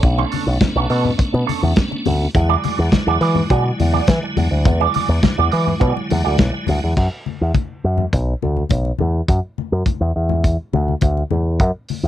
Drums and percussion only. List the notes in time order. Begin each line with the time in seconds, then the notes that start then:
0.03 kick, closed hi-hat
0.18 muted conga
0.32 open hi-hat, high conga
0.61 kick, snare, closed hi-hat, high conga
0.77 muted conga
0.90 open hi-hat
1.05 low conga
1.19 kick, closed hi-hat, muted conga
1.34 muted conga
1.49 open hi-hat, high conga
1.63 high conga
1.76 kick, snare, closed hi-hat, muted conga, high conga
1.92 muted conga
2.05 open hi-hat, high conga, low conga
2.35 kick, closed hi-hat
2.50 muted conga
2.64 open hi-hat, high conga
2.92 kick, snare, closed hi-hat, high conga
3.08 muted conga
3.21 open hi-hat
3.35 low conga
3.50 kick, closed hi-hat
3.80 open hi-hat, high conga
3.94 high conga
4.07 kick, snare, closed hi-hat, high conga
4.37 open hi-hat, high conga, low conga
4.65 kick, closed hi-hat, low conga
4.81 muted conga
4.94 open hi-hat, high conga
5.23 kick, snare, closed hi-hat, muted conga, high conga
5.39 muted conga
5.52 open hi-hat
5.67 low conga
5.81 kick, closed hi-hat, muted conga
5.97 muted conga
6.10 open hi-hat, high conga
6.38 kick, snare, closed hi-hat, muted conga, high conga
6.67 open hi-hat, high conga, low conga
6.96 kick, crash, muted conga
7.26 high conga
7.54 kick, closed hi-hat, high conga
7.98 low conga
8.13 kick, closed hi-hat
8.42 high conga
8.57 high conga
8.69 kick, closed hi-hat, muted conga, high conga
8.85 muted conga
8.98 high conga, low conga
9.28 kick, closed hi-hat
9.58 high conga
9.86 kick, closed hi-hat, high conga
10.29 low conga
10.44 kick, closed hi-hat, muted conga
10.73 high conga
10.88 high conga
11.01 kick, closed hi-hat, high conga
11.17 muted conga
11.31 high conga, low conga
11.60 kick, closed hi-hat
11.89 open hi-hat, high conga